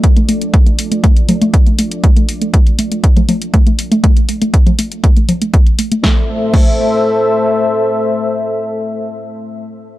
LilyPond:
<<
  \new Staff \with { instrumentName = "Analog synth pad" } { \time 4/4 \key a \minor \tempo 4 = 120 <f' a' d''>1~ | <f' a' d''>1~ | <f' a' d''>1 | <a a' c'' e''>1~ |
<a a' c'' e''>1 | }
  \new Staff \with { instrumentName = "Synth arpeggio sound" } { \time 4/4 \key a \minor r16 a16 a16 r16 a16 a16 r16 a16 a16 r16 a16 a16 r16 a16 a16 r16 | a16 a16 r16 a16 a16 r16 a16 a16 r16 a16 a16 r16 a16 a16 r16 a16 | a16 r16 a16 a16 r16 a16 a16 r16 a16 a16 r16 a16 a16 r16 a16 a16 | a16 r8. a16 r2 r8. |
r1 | }
  \new DrumStaff \with { instrumentName = "Drums" } \drummode { \time 4/4 <hh bd>16 hh16 hho16 hh16 <hh bd>16 hh16 hho16 hh16 <hh bd>16 hh16 <cgl hho>16 hh16 <hh bd>16 hh16 hho16 hh16 | <hh bd>16 hh16 hho16 hh16 <hh bd>16 hh16 hho16 hh16 <hh bd>16 <cgl hh>16 <cgl hho>16 hh16 <hh bd>16 hh16 hho16 hh16 | <hh bd>16 hh16 hho16 hh16 <hh bd>16 <cgl hh>16 hho16 hh16 <hh bd>16 hh16 <cgl hho>16 hh16 <hh bd>16 hh16 hho16 hh16 | <bd sn>4 <cymc bd>4 r4 r4 |
r4 r4 r4 r4 | }
>>